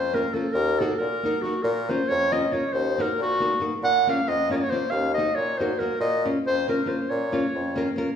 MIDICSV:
0, 0, Header, 1, 4, 480
1, 0, Start_track
1, 0, Key_signature, -5, "minor"
1, 0, Tempo, 436364
1, 602, Time_signature, 5, 3, 24, 8
1, 8974, End_track
2, 0, Start_track
2, 0, Title_t, "Clarinet"
2, 0, Program_c, 0, 71
2, 0, Note_on_c, 0, 72, 98
2, 156, Note_on_c, 0, 70, 84
2, 172, Note_off_c, 0, 72, 0
2, 373, Note_on_c, 0, 69, 88
2, 389, Note_off_c, 0, 70, 0
2, 588, Note_on_c, 0, 70, 105
2, 604, Note_off_c, 0, 69, 0
2, 871, Note_on_c, 0, 69, 90
2, 887, Note_off_c, 0, 70, 0
2, 1087, Note_on_c, 0, 70, 109
2, 1104, Note_off_c, 0, 69, 0
2, 1561, Note_on_c, 0, 66, 87
2, 1578, Note_off_c, 0, 70, 0
2, 1786, Note_on_c, 0, 70, 88
2, 1802, Note_off_c, 0, 66, 0
2, 2081, Note_on_c, 0, 72, 96
2, 2098, Note_off_c, 0, 70, 0
2, 2295, Note_on_c, 0, 73, 114
2, 2312, Note_off_c, 0, 72, 0
2, 2556, Note_on_c, 0, 75, 92
2, 2573, Note_off_c, 0, 73, 0
2, 2782, Note_on_c, 0, 73, 85
2, 2798, Note_off_c, 0, 75, 0
2, 3005, Note_on_c, 0, 72, 97
2, 3021, Note_off_c, 0, 73, 0
2, 3313, Note_on_c, 0, 70, 88
2, 3329, Note_off_c, 0, 72, 0
2, 3525, Note_off_c, 0, 70, 0
2, 3540, Note_on_c, 0, 66, 105
2, 4018, Note_off_c, 0, 66, 0
2, 4224, Note_on_c, 0, 78, 122
2, 4474, Note_off_c, 0, 78, 0
2, 4506, Note_on_c, 0, 77, 100
2, 4712, Note_on_c, 0, 75, 124
2, 4728, Note_off_c, 0, 77, 0
2, 4958, Note_off_c, 0, 75, 0
2, 4964, Note_on_c, 0, 73, 86
2, 5024, Note_on_c, 0, 75, 76
2, 5041, Note_off_c, 0, 73, 0
2, 5080, Note_on_c, 0, 73, 99
2, 5097, Note_off_c, 0, 75, 0
2, 5172, Note_on_c, 0, 72, 97
2, 5189, Note_off_c, 0, 73, 0
2, 5398, Note_on_c, 0, 77, 100
2, 5414, Note_off_c, 0, 72, 0
2, 5651, Note_off_c, 0, 77, 0
2, 5657, Note_on_c, 0, 75, 100
2, 5886, Note_on_c, 0, 73, 105
2, 5903, Note_off_c, 0, 75, 0
2, 6140, Note_on_c, 0, 72, 90
2, 6156, Note_off_c, 0, 73, 0
2, 6368, Note_on_c, 0, 70, 89
2, 6384, Note_off_c, 0, 72, 0
2, 6596, Note_off_c, 0, 70, 0
2, 6610, Note_on_c, 0, 75, 97
2, 6867, Note_off_c, 0, 75, 0
2, 7117, Note_on_c, 0, 72, 113
2, 7351, Note_off_c, 0, 72, 0
2, 7362, Note_on_c, 0, 70, 83
2, 7574, Note_on_c, 0, 72, 84
2, 7591, Note_off_c, 0, 70, 0
2, 7806, Note_on_c, 0, 73, 88
2, 7822, Note_off_c, 0, 72, 0
2, 8784, Note_off_c, 0, 73, 0
2, 8974, End_track
3, 0, Start_track
3, 0, Title_t, "Nylon-string guitar"
3, 0, Program_c, 1, 24
3, 148, Note_on_c, 1, 61, 48
3, 154, Note_on_c, 1, 58, 58
3, 162, Note_on_c, 1, 65, 48
3, 173, Note_on_c, 1, 70, 54
3, 282, Note_off_c, 1, 61, 0
3, 285, Note_off_c, 1, 58, 0
3, 289, Note_off_c, 1, 65, 0
3, 295, Note_off_c, 1, 70, 0
3, 371, Note_on_c, 1, 58, 51
3, 380, Note_on_c, 1, 61, 47
3, 392, Note_on_c, 1, 65, 43
3, 398, Note_on_c, 1, 70, 61
3, 504, Note_off_c, 1, 58, 0
3, 508, Note_off_c, 1, 61, 0
3, 515, Note_off_c, 1, 65, 0
3, 516, Note_off_c, 1, 70, 0
3, 886, Note_on_c, 1, 58, 58
3, 887, Note_on_c, 1, 63, 61
3, 895, Note_on_c, 1, 66, 57
3, 905, Note_on_c, 1, 70, 74
3, 1015, Note_off_c, 1, 63, 0
3, 1016, Note_off_c, 1, 58, 0
3, 1020, Note_off_c, 1, 66, 0
3, 1025, Note_off_c, 1, 70, 0
3, 1357, Note_on_c, 1, 58, 57
3, 1373, Note_on_c, 1, 63, 59
3, 1379, Note_on_c, 1, 66, 51
3, 1385, Note_on_c, 1, 70, 76
3, 1488, Note_off_c, 1, 58, 0
3, 1496, Note_off_c, 1, 63, 0
3, 1499, Note_off_c, 1, 66, 0
3, 1501, Note_off_c, 1, 70, 0
3, 1579, Note_on_c, 1, 58, 54
3, 1593, Note_on_c, 1, 63, 50
3, 1598, Note_on_c, 1, 70, 58
3, 1603, Note_on_c, 1, 66, 52
3, 1709, Note_off_c, 1, 58, 0
3, 1715, Note_off_c, 1, 63, 0
3, 1718, Note_off_c, 1, 70, 0
3, 1721, Note_off_c, 1, 66, 0
3, 2081, Note_on_c, 1, 58, 63
3, 2088, Note_on_c, 1, 61, 68
3, 2095, Note_on_c, 1, 65, 62
3, 2101, Note_on_c, 1, 70, 66
3, 2213, Note_off_c, 1, 58, 0
3, 2216, Note_off_c, 1, 61, 0
3, 2221, Note_off_c, 1, 65, 0
3, 2222, Note_off_c, 1, 70, 0
3, 2552, Note_on_c, 1, 58, 62
3, 2560, Note_on_c, 1, 61, 51
3, 2560, Note_on_c, 1, 65, 52
3, 2565, Note_on_c, 1, 70, 66
3, 2686, Note_off_c, 1, 58, 0
3, 2688, Note_off_c, 1, 65, 0
3, 2689, Note_off_c, 1, 61, 0
3, 2692, Note_off_c, 1, 70, 0
3, 2767, Note_on_c, 1, 58, 46
3, 2774, Note_on_c, 1, 61, 42
3, 2784, Note_on_c, 1, 65, 53
3, 2798, Note_on_c, 1, 70, 62
3, 2902, Note_off_c, 1, 58, 0
3, 2906, Note_off_c, 1, 61, 0
3, 2911, Note_off_c, 1, 65, 0
3, 2918, Note_off_c, 1, 70, 0
3, 3280, Note_on_c, 1, 58, 63
3, 3289, Note_on_c, 1, 63, 60
3, 3292, Note_on_c, 1, 66, 57
3, 3301, Note_on_c, 1, 70, 81
3, 3413, Note_off_c, 1, 58, 0
3, 3417, Note_off_c, 1, 63, 0
3, 3420, Note_off_c, 1, 66, 0
3, 3422, Note_off_c, 1, 70, 0
3, 3744, Note_on_c, 1, 58, 62
3, 3752, Note_on_c, 1, 63, 55
3, 3756, Note_on_c, 1, 66, 55
3, 3760, Note_on_c, 1, 70, 55
3, 3881, Note_off_c, 1, 58, 0
3, 3886, Note_off_c, 1, 63, 0
3, 3887, Note_off_c, 1, 66, 0
3, 3890, Note_off_c, 1, 70, 0
3, 3957, Note_on_c, 1, 58, 55
3, 3969, Note_on_c, 1, 63, 46
3, 3973, Note_on_c, 1, 66, 48
3, 3980, Note_on_c, 1, 70, 57
3, 4098, Note_off_c, 1, 58, 0
3, 4104, Note_off_c, 1, 66, 0
3, 4105, Note_off_c, 1, 63, 0
3, 4109, Note_off_c, 1, 70, 0
3, 4479, Note_on_c, 1, 58, 66
3, 4494, Note_on_c, 1, 61, 60
3, 4498, Note_on_c, 1, 65, 56
3, 4501, Note_on_c, 1, 70, 74
3, 4613, Note_off_c, 1, 58, 0
3, 4620, Note_off_c, 1, 65, 0
3, 4621, Note_off_c, 1, 61, 0
3, 4624, Note_off_c, 1, 70, 0
3, 4944, Note_on_c, 1, 58, 57
3, 4955, Note_on_c, 1, 61, 56
3, 4965, Note_on_c, 1, 65, 55
3, 4976, Note_on_c, 1, 70, 65
3, 5082, Note_off_c, 1, 58, 0
3, 5087, Note_off_c, 1, 61, 0
3, 5092, Note_off_c, 1, 65, 0
3, 5098, Note_off_c, 1, 70, 0
3, 5192, Note_on_c, 1, 58, 50
3, 5200, Note_on_c, 1, 61, 46
3, 5208, Note_on_c, 1, 65, 45
3, 5213, Note_on_c, 1, 70, 60
3, 5316, Note_off_c, 1, 58, 0
3, 5320, Note_off_c, 1, 61, 0
3, 5324, Note_off_c, 1, 65, 0
3, 5325, Note_off_c, 1, 70, 0
3, 5697, Note_on_c, 1, 58, 58
3, 5703, Note_on_c, 1, 63, 65
3, 5703, Note_on_c, 1, 66, 60
3, 5712, Note_on_c, 1, 70, 73
3, 5822, Note_off_c, 1, 58, 0
3, 5824, Note_off_c, 1, 66, 0
3, 5825, Note_off_c, 1, 63, 0
3, 5830, Note_off_c, 1, 70, 0
3, 6161, Note_on_c, 1, 63, 54
3, 6162, Note_on_c, 1, 58, 60
3, 6171, Note_on_c, 1, 66, 62
3, 6174, Note_on_c, 1, 70, 70
3, 6290, Note_off_c, 1, 63, 0
3, 6292, Note_off_c, 1, 58, 0
3, 6296, Note_off_c, 1, 66, 0
3, 6296, Note_off_c, 1, 70, 0
3, 6381, Note_on_c, 1, 58, 57
3, 6393, Note_on_c, 1, 63, 47
3, 6394, Note_on_c, 1, 66, 45
3, 6408, Note_on_c, 1, 70, 66
3, 6510, Note_off_c, 1, 58, 0
3, 6516, Note_off_c, 1, 66, 0
3, 6517, Note_off_c, 1, 63, 0
3, 6524, Note_off_c, 1, 70, 0
3, 6876, Note_on_c, 1, 58, 59
3, 6880, Note_on_c, 1, 61, 70
3, 6882, Note_on_c, 1, 65, 63
3, 6891, Note_on_c, 1, 70, 70
3, 7012, Note_off_c, 1, 58, 0
3, 7013, Note_off_c, 1, 61, 0
3, 7013, Note_off_c, 1, 65, 0
3, 7019, Note_off_c, 1, 70, 0
3, 7347, Note_on_c, 1, 58, 64
3, 7355, Note_on_c, 1, 61, 59
3, 7358, Note_on_c, 1, 65, 49
3, 7365, Note_on_c, 1, 70, 69
3, 7484, Note_off_c, 1, 58, 0
3, 7488, Note_off_c, 1, 61, 0
3, 7488, Note_off_c, 1, 65, 0
3, 7492, Note_off_c, 1, 70, 0
3, 7546, Note_on_c, 1, 58, 58
3, 7553, Note_on_c, 1, 61, 48
3, 7559, Note_on_c, 1, 65, 56
3, 7567, Note_on_c, 1, 70, 54
3, 7693, Note_off_c, 1, 58, 0
3, 7696, Note_off_c, 1, 61, 0
3, 7699, Note_off_c, 1, 65, 0
3, 7703, Note_off_c, 1, 70, 0
3, 8055, Note_on_c, 1, 58, 73
3, 8059, Note_on_c, 1, 61, 67
3, 8062, Note_on_c, 1, 65, 67
3, 8071, Note_on_c, 1, 70, 69
3, 8201, Note_off_c, 1, 58, 0
3, 8201, Note_off_c, 1, 61, 0
3, 8204, Note_off_c, 1, 65, 0
3, 8208, Note_off_c, 1, 70, 0
3, 8531, Note_on_c, 1, 58, 76
3, 8538, Note_on_c, 1, 61, 70
3, 8552, Note_on_c, 1, 65, 64
3, 8554, Note_on_c, 1, 70, 67
3, 8675, Note_off_c, 1, 58, 0
3, 8678, Note_off_c, 1, 61, 0
3, 8685, Note_off_c, 1, 70, 0
3, 8686, Note_off_c, 1, 65, 0
3, 8756, Note_on_c, 1, 58, 64
3, 8765, Note_on_c, 1, 61, 54
3, 8776, Note_on_c, 1, 65, 52
3, 8781, Note_on_c, 1, 70, 81
3, 8897, Note_off_c, 1, 58, 0
3, 8901, Note_off_c, 1, 61, 0
3, 8907, Note_off_c, 1, 65, 0
3, 8908, Note_off_c, 1, 70, 0
3, 8974, End_track
4, 0, Start_track
4, 0, Title_t, "Bassoon"
4, 0, Program_c, 2, 70
4, 0, Note_on_c, 2, 41, 70
4, 318, Note_off_c, 2, 41, 0
4, 594, Note_on_c, 2, 39, 95
4, 900, Note_off_c, 2, 39, 0
4, 1100, Note_on_c, 2, 46, 60
4, 1346, Note_off_c, 2, 46, 0
4, 1802, Note_on_c, 2, 46, 94
4, 2106, Note_off_c, 2, 46, 0
4, 2317, Note_on_c, 2, 41, 88
4, 2731, Note_off_c, 2, 41, 0
4, 3016, Note_on_c, 2, 39, 83
4, 3316, Note_off_c, 2, 39, 0
4, 3506, Note_on_c, 2, 46, 71
4, 3924, Note_off_c, 2, 46, 0
4, 4207, Note_on_c, 2, 46, 82
4, 4510, Note_off_c, 2, 46, 0
4, 4702, Note_on_c, 2, 41, 70
4, 5121, Note_off_c, 2, 41, 0
4, 5400, Note_on_c, 2, 39, 90
4, 5705, Note_off_c, 2, 39, 0
4, 5905, Note_on_c, 2, 46, 69
4, 6323, Note_off_c, 2, 46, 0
4, 6603, Note_on_c, 2, 46, 102
4, 6907, Note_off_c, 2, 46, 0
4, 7110, Note_on_c, 2, 41, 73
4, 7354, Note_off_c, 2, 41, 0
4, 7812, Note_on_c, 2, 46, 79
4, 8113, Note_off_c, 2, 46, 0
4, 8305, Note_on_c, 2, 41, 66
4, 8722, Note_off_c, 2, 41, 0
4, 8974, End_track
0, 0, End_of_file